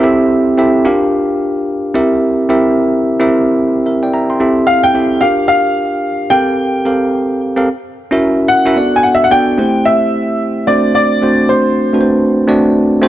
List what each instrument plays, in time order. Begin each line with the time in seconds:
0.03 tine electric piano C4 E4 G4 A4 E5
0.58 tine electric piano C4 E4 G4 A4 E5
0.85 tine electric piano D4 F4 G4 A#4 F5
1.94 tine electric piano C4 E4 G4 A#4 E5
2.49 tine electric piano C4 E4 G4 A#4 E5
3.20 tine electric piano C4 E4 G4 A#4 E5
3.86 tine electric piano A#4 E5
4.03 tine electric piano D5 G5
4.14 tine electric piano E5 A#5
4.30 tine electric piano G5 C6
4.40 tine electric piano C4 E4 G4 A4 E5
4.67 grand piano F5
4.84 grand piano G5
4.94 tine electric piano C4 E4 G4 A4 E5
5.21 tine electric piano D4 F4 G4 A#4 F5, grand piano F5
5.48 grand piano F5
6.30 tine electric piano C4 G4 A4 A#4 F5, grand piano G5
6.85 tine electric piano C4 G4 A4 A#4 F5
7.56 tine electric piano C4 G4 A4 A#4 F5
8.11 tine electric piano C#4 E4 F#4 A#4 E5
8.48 grand piano F#5
8.66 tine electric piano C#4 E4 F#4 A#4 E5
8.76 tine electric piano B3 D4 F#4 A4 D5
8.96 grand piano G#5
9.03 grand piano F#5
9.15 grand piano E5
9.24 grand piano F#5
9.31 tine electric piano B3 D4 F#4 A4 D5, grand piano G5
9.58 tine electric piano A3 C4 E4 G4 C5
9.85 grand piano E5
10.67 tine electric piano A3 C4 D4 F#4 C5, grand piano D5
10.95 grand piano D5
11.22 tine electric piano A3 C4 D4 F#4 C5
11.49 grand piano C5
11.93 tine electric piano A3 C4 D4 F#4 B4
12.01 tine electric piano C5
12.47 tine electric piano A3 C4 D4 F#4 D5
13.02 tine electric piano A3 C4 D4 F#4 C5